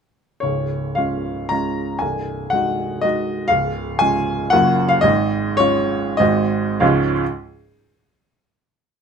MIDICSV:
0, 0, Header, 1, 2, 480
1, 0, Start_track
1, 0, Key_signature, -5, "major"
1, 0, Tempo, 533333
1, 385, Time_signature, 3, 2, 24, 8
1, 1357, Tempo, 504626
1, 4717, Tempo, 552995
1, 5197, Tempo, 614125
1, 6157, Tempo, 548948
1, 8073, End_track
2, 0, Start_track
2, 0, Title_t, "Grand piano"
2, 0, Program_c, 0, 0
2, 362, Note_on_c, 0, 73, 55
2, 386, Note_on_c, 0, 25, 37
2, 386, Note_on_c, 0, 37, 37
2, 583, Control_c, 0, 64, 127
2, 856, Note_on_c, 0, 77, 59
2, 861, Note_off_c, 0, 73, 0
2, 876, Note_on_c, 0, 56, 28
2, 880, Note_on_c, 0, 61, 27
2, 884, Note_on_c, 0, 65, 31
2, 1323, Note_off_c, 0, 56, 0
2, 1325, Note_off_c, 0, 61, 0
2, 1327, Note_off_c, 0, 65, 0
2, 1340, Note_on_c, 0, 82, 72
2, 1349, Note_off_c, 0, 77, 0
2, 1362, Note_on_c, 0, 56, 30
2, 1364, Note_on_c, 0, 61, 31
2, 1365, Control_c, 0, 64, 0
2, 1368, Note_on_c, 0, 65, 34
2, 1790, Note_off_c, 0, 25, 0
2, 1790, Note_off_c, 0, 37, 0
2, 1792, Note_off_c, 0, 56, 0
2, 1793, Note_off_c, 0, 61, 0
2, 1795, Note_off_c, 0, 65, 0
2, 1813, Note_on_c, 0, 80, 54
2, 1819, Note_off_c, 0, 82, 0
2, 1837, Note_on_c, 0, 24, 37
2, 1840, Note_on_c, 0, 36, 42
2, 1982, Control_c, 0, 64, 127
2, 2301, Note_on_c, 0, 78, 63
2, 2317, Note_off_c, 0, 80, 0
2, 2326, Note_on_c, 0, 56, 30
2, 2329, Note_on_c, 0, 63, 31
2, 2339, Note_on_c, 0, 66, 33
2, 2776, Note_off_c, 0, 56, 0
2, 2777, Note_off_c, 0, 63, 0
2, 2782, Note_off_c, 0, 66, 0
2, 2790, Note_on_c, 0, 75, 71
2, 2801, Note_off_c, 0, 78, 0
2, 2814, Note_on_c, 0, 56, 38
2, 2818, Note_on_c, 0, 63, 33
2, 2822, Note_on_c, 0, 66, 38
2, 2824, Control_c, 0, 64, 0
2, 3224, Note_off_c, 0, 56, 0
2, 3226, Note_off_c, 0, 63, 0
2, 3228, Note_off_c, 0, 24, 0
2, 3228, Note_off_c, 0, 66, 0
2, 3229, Note_off_c, 0, 36, 0
2, 3230, Note_on_c, 0, 77, 84
2, 3250, Note_off_c, 0, 75, 0
2, 3252, Note_on_c, 0, 37, 48
2, 3257, Note_on_c, 0, 25, 43
2, 3426, Control_c, 0, 64, 127
2, 3717, Note_on_c, 0, 80, 86
2, 3725, Note_off_c, 0, 77, 0
2, 3737, Note_on_c, 0, 56, 40
2, 3737, Note_on_c, 0, 61, 37
2, 3745, Note_on_c, 0, 65, 41
2, 4188, Note_off_c, 0, 56, 0
2, 4188, Note_off_c, 0, 61, 0
2, 4192, Note_off_c, 0, 65, 0
2, 4195, Note_off_c, 0, 37, 0
2, 4197, Note_off_c, 0, 25, 0
2, 4204, Note_on_c, 0, 78, 86
2, 4216, Note_off_c, 0, 80, 0
2, 4227, Note_on_c, 0, 30, 54
2, 4228, Note_on_c, 0, 42, 58
2, 4228, Note_on_c, 0, 58, 40
2, 4231, Note_on_c, 0, 61, 41
2, 4236, Note_on_c, 0, 65, 43
2, 4241, Control_c, 0, 64, 0
2, 4392, Control_c, 0, 64, 127
2, 4570, Note_on_c, 0, 77, 79
2, 4584, Note_off_c, 0, 78, 0
2, 4679, Note_off_c, 0, 58, 0
2, 4681, Note_off_c, 0, 61, 0
2, 4683, Note_off_c, 0, 65, 0
2, 4689, Note_on_c, 0, 75, 89
2, 4702, Note_off_c, 0, 30, 0
2, 4702, Note_off_c, 0, 42, 0
2, 4704, Note_off_c, 0, 77, 0
2, 4709, Note_on_c, 0, 32, 55
2, 4714, Note_on_c, 0, 44, 62
2, 4728, Control_c, 0, 64, 0
2, 4891, Control_c, 0, 64, 127
2, 5176, Note_on_c, 0, 73, 87
2, 5184, Note_off_c, 0, 75, 0
2, 5196, Note_on_c, 0, 56, 40
2, 5199, Note_on_c, 0, 61, 43
2, 5203, Note_on_c, 0, 65, 52
2, 5640, Note_off_c, 0, 56, 0
2, 5642, Note_off_c, 0, 32, 0
2, 5642, Note_off_c, 0, 61, 0
2, 5643, Note_off_c, 0, 44, 0
2, 5644, Note_off_c, 0, 65, 0
2, 5649, Note_on_c, 0, 75, 84
2, 5663, Note_off_c, 0, 73, 0
2, 5668, Note_on_c, 0, 44, 61
2, 5671, Note_on_c, 0, 56, 43
2, 5672, Note_on_c, 0, 32, 53
2, 5673, Note_on_c, 0, 60, 43
2, 5681, Note_on_c, 0, 66, 43
2, 5685, Control_c, 0, 64, 0
2, 5839, Control_c, 0, 64, 127
2, 6125, Note_off_c, 0, 56, 0
2, 6126, Note_off_c, 0, 60, 0
2, 6130, Note_off_c, 0, 66, 0
2, 6136, Note_off_c, 0, 44, 0
2, 6140, Note_on_c, 0, 77, 59
2, 6142, Note_off_c, 0, 32, 0
2, 6144, Note_on_c, 0, 37, 73
2, 6145, Note_off_c, 0, 75, 0
2, 6148, Note_on_c, 0, 44, 61
2, 6151, Note_on_c, 0, 53, 59
2, 6153, Note_on_c, 0, 56, 66
2, 6153, Note_on_c, 0, 61, 60
2, 6155, Note_on_c, 0, 65, 65
2, 6170, Control_c, 0, 64, 0
2, 6314, Control_c, 0, 64, 127
2, 6415, Note_off_c, 0, 77, 0
2, 6418, Note_off_c, 0, 37, 0
2, 6420, Note_off_c, 0, 44, 0
2, 6422, Note_off_c, 0, 53, 0
2, 6423, Note_off_c, 0, 56, 0
2, 6424, Note_off_c, 0, 61, 0
2, 6425, Note_off_c, 0, 65, 0
2, 6513, Control_c, 0, 64, 0
2, 8073, End_track
0, 0, End_of_file